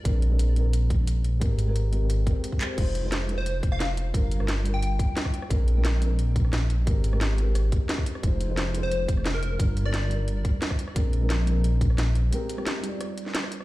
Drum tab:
CC |----------------|----------------|x---------------|----------------|
HH |x-x-x-x-x-x-x-x-|x-x-x-x-x-x-x-x-|x-x-x-x-x-x-x-x-|x-x-x-x-x-x-x-x-|
CP |----------------|--------------x-|----------------|----------------|
SD |----------------|----------------|----o------ro---|---ro-------or-r|
BD |o---------o-----|o---------o--o--|o---------o-----|o---------o--o--|

CC |----------------|----------------|----------------|----------------|
HH |x-x-x-x-x-x-x-x-|x-x-x-x-x-x-x-x-|x-x-x-x-x-x-x-x-|x-x-x-x-x-x-x-x-|
CP |----------------|----------------|----------------|----------------|
SD |----o------ro---|---ro---r---or-r|----o------ro---|---ro-------or-r|
BD |o---------o-----|o---------o--o--|o---------o-----|o---------o--o--|

CC |----------------|----------------|
HH |x-x-x-x-x-x-x-x-|x-x-x-x-x-x-x-x-|
CP |----------------|----------------|
SD |----o------ro---|---ro---r--oor-r|
BD |o---------o-----|----------------|